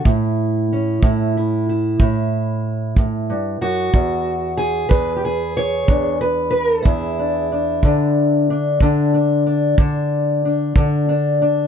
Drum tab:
BD |o--o--o--o--|o--o--o--o--|o--o--o--o--|